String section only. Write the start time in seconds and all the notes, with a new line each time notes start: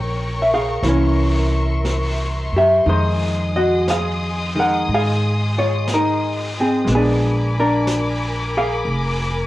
Already playing: A#4 C#5 G5 C#6
0.82 E5 C6
2.86 G#4 D#5 D#6
6.86 A#4 G#5 B5 D6